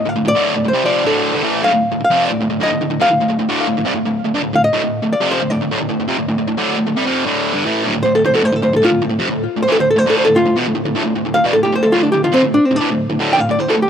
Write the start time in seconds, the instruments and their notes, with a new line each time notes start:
0.05 distorted electric guitar D2 A2, hollow-body jazz guitar F5
0.16 distorted electric guitar D2 A2
0.25 distorted electric guitar D2 A2, hollow-body jazz guitar D5
0.35 distorted electric guitar D2 A2 D3
0.55 distorted electric guitar D2 A2
0.65 distorted electric guitar D2 A2, hollow-body jazz guitar C5
0.74 distorted electric guitar C3 G3
0.85 distorted electric guitar F2 C3 F3, hollow-body jazz guitar D5
1.04 distorted electric guitar D2 A2 D3, hollow-body jazz guitar A4
1.34 distorted electric guitar G2 D3
1.42 distorted electric guitar A2 E3 A3
1.63 distorted electric guitar D2 A2, hollow-body jazz guitar F5
1.72 distorted electric guitar D2 A2
1.92 distorted electric guitar D2 A2
2.01 hollow-body jazz guitar F5, muted distorted electric guitar stroke
2.10 distorted electric guitar F2 C3 F3
2.25 hollow-body jazz guitar D5
2.30 distorted electric guitar D2 A2
2.41 distorted electric guitar D2 A2
2.50 distorted electric guitar D2 A2
2.60 distorted electric guitar D2 A2, hollow-body jazz guitar D#5
2.72 distorted electric guitar D2 A2
2.81 distorted electric guitar D2 A2
2.90 distorted electric guitar D2 A2
3.00 distorted electric guitar F2 C3, hollow-body jazz guitar F5
3.10 distorted electric guitar D2 A2
3.20 distorted electric guitar D2 A2
3.28 distorted electric guitar D2 A2
3.39 distorted electric guitar D2 A2
3.49 distorted electric guitar D2 A2 D3
3.68 distorted electric guitar D2 A2
3.77 distorted electric guitar D2 A2
3.85 distorted electric guitar C3 G3
3.95 distorted electric guitar D2 A2
4.06 distorted electric guitar D2 A2
4.25 distorted electric guitar D2 A2
4.35 distorted electric guitar G2 D3
4.42 distorted electric guitar D2 A2
4.53 distorted electric guitar D2 A2, hollow-body jazz guitar F5
4.64 hollow-body jazz guitar D#5
4.73 distorted electric guitar D2 A2
4.83 distorted electric guitar D2 A2
5.02 distorted electric guitar D2 A2
5.13 hollow-body jazz guitar D5, muted distorted electric guitar stroke
5.20 distorted electric guitar F2 C3 F3
5.32 hollow-body jazz guitar C5
5.41 distorted electric guitar D2 A2
5.50 distorted electric guitar D2 A2, hollow-body jazz guitar D5
5.61 distorted electric guitar D2 A2
5.71 distorted electric guitar D2 A2
5.80 distorted electric guitar D2 A2
5.89 distorted electric guitar D2 A2
6.00 distorted electric guitar D2 A2
6.08 distorted electric guitar F2 C3
6.18 distorted electric guitar D2 A2
6.28 distorted electric guitar D2 A2
6.38 distorted electric guitar D2 A2
6.47 distorted electric guitar D2 A2
6.57 distorted electric guitar D2 A2 D3
6.77 distorted electric guitar D2 A2
6.87 distorted electric guitar D2 A2
6.96 distorted electric guitar C3 G3
7.06 distorted electric guitar F2 C3 F3
7.25 distorted electric guitar D2 A2 D3
7.53 distorted electric guitar G2 D3
7.65 distorted electric guitar A2 E3 A3
7.85 distorted electric guitar D2 A2
7.95 distorted electric guitar D2 A2
8.03 distorted electric guitar D2 A2, hollow-body jazz guitar C5
8.15 distorted electric guitar D2 A2, hollow-body jazz guitar A4
8.24 distorted electric guitar D2 A2, hollow-body jazz guitar C5
8.34 distorted electric guitar E2 B2, hollow-body jazz guitar A4
8.43 distorted electric guitar D2 A2, hollow-body jazz guitar C5
8.52 distorted electric guitar D2 A2, hollow-body jazz guitar A4
8.62 distorted electric guitar D2 A2, hollow-body jazz guitar C5
8.73 distorted electric guitar D2 A2, hollow-body jazz guitar A4
8.82 distorted electric guitar D2 A2, hollow-body jazz guitar F4
8.90 distorted electric guitar D2 A2
9.02 distorted electric guitar D2 A2
9.10 distorted electric guitar D2 A2
9.19 distorted electric guitar F2 C3
9.29 distorted electric guitar D2 A2
9.57 distorted electric guitar D2 A2
9.63 hollow-body jazz guitar C5
9.68 distorted electric guitar A2 E3
9.72 hollow-body jazz guitar A4
9.79 distorted electric guitar D2 A2, hollow-body jazz guitar C5
9.91 hollow-body jazz guitar A4
9.96 distorted electric guitar D2 A2, hollow-body jazz guitar C5
10.06 distorted electric guitar D2 A2 D3, hollow-body jazz guitar A4
10.17 hollow-body jazz guitar C5
10.25 distorted electric guitar D2 A2, hollow-body jazz guitar A4
10.36 distorted electric guitar D2 A2, hollow-body jazz guitar F4
10.46 distorted electric guitar D2 A2
10.56 distorted electric guitar E2 B2
10.68 distorted electric guitar D2 A2
10.75 distorted electric guitar D2 A2
10.85 distorted electric guitar D2 A2
10.95 distorted electric guitar D2 A2
11.04 distorted electric guitar D2 A2
11.16 distorted electric guitar D2 A2
11.25 distorted electric guitar D2 A2
11.34 distorted electric guitar D2 A2, hollow-body jazz guitar F5
11.44 distorted electric guitar E2 B2, hollow-body jazz guitar D5
11.53 distorted electric guitar D2 A2, hollow-body jazz guitar A4
11.63 distorted electric guitar D2 A2, hollow-body jazz guitar G4
11.73 distorted electric guitar D2 A2, hollow-body jazz guitar C5
11.83 distorted electric guitar D2 A2, hollow-body jazz guitar A4
11.92 distorted electric guitar D2 A2, hollow-body jazz guitar F4
12.02 distorted electric guitar D2 A2, hollow-body jazz guitar D4
12.12 distorted electric guitar D2 A2, hollow-body jazz guitar G4
12.24 distorted electric guitar D2 A2, hollow-body jazz guitar F4
12.32 distorted electric guitar F2 C3, hollow-body jazz guitar C4
12.42 distorted electric guitar D2 A2
12.54 hollow-body jazz guitar D4
12.65 hollow-body jazz guitar C4
12.71 distorted electric guitar D2 A2
12.76 hollow-body jazz guitar D4
12.80 distorted electric guitar A2 E3
12.91 distorted electric guitar D2 A2
13.10 distorted electric guitar D2 A2
13.19 distorted electric guitar D2 A2 D3
13.33 hollow-body jazz guitar G5
13.37 distorted electric guitar D2 A2, hollow-body jazz guitar F5
13.49 distorted electric guitar D2 A2, hollow-body jazz guitar D5
13.59 distorted electric guitar D2 A2, hollow-body jazz guitar C5
13.69 distorted electric guitar E2 B2, hollow-body jazz guitar A4
13.77 distorted electric guitar D2 A2
13.82 hollow-body jazz guitar G4